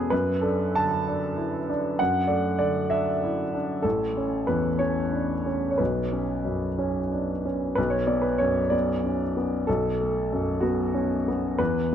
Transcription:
Already playing: E2 B2 G#3 B3 C#4 G#4 A4 B4
0.10 F#2 B4
0.41 D4 A4
0.75 D3 A5
1.08 D4
1.37 E4
1.69 D4
1.99 F#2 F#5
2.27 A3 D5
2.59 D3 D5
2.90 D4 E5
3.24 E4
3.54 D4
3.82 A1 A4
4.17 C#4
4.47 E2 B4
4.79 C#4 C#5
5.13 D4
5.46 C#4
5.71 C#5
5.78 B1 B4
6.13 C#4
6.45 F#2
6.78 C#4
7.12 D4
7.45 C#4
7.75 B1 B4
7.90 C#5
8.07 B3 D5
8.22 B4
8.38 F#2 C#5
8.70 B3 D5
9.04 C#4
9.37 B3
9.67 B1 A4
10.01 A3
10.32 F#2
10.60 B3 F#4
10.94 C#4
11.28 B3
11.58 E2 B4

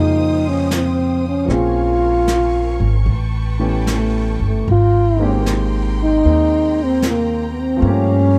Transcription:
Already playing: F2 C#3 F3 G#3 A#3 D#4 F4 G4 G#4 C5 F5 G5 D#6
0.48 C#4
0.71 C4, snare, hi-hat pedal
1.29 C#4
1.45 A#1 F3 A#3 C4
1.49 C#4 F4 G#4 A#4 F5 G#5, brush sweep, snare
1.54 C#6
2.28 snare, hi-hat pedal
2.80 G#1
3.06 A1 B4 G5 A5, brush sweep
3.59 E3 A3 B3 C#4 G4
3.87 snare, hi-hat pedal
3.96 A3
4.40 G1
4.47 A3
4.67 G#1 G5 A#5 C6, brush sweep
4.71 F4
5.17 D#3 G#3 A#3 C4
5.22 G4
5.46 snare, hi-hat pedal
6.04 D#4
6.24 D#2 A#3 C4 D#4 G#4, brush sweep
6.84 C4
7.02 snare, hi-hat pedal
7.10 A#3
7.53 B3
7.62 C4
7.77 F3 A3 F5, brush sweep
7.81 G2 A#3 G4
7.85 C#4 G4
7.91 C#4

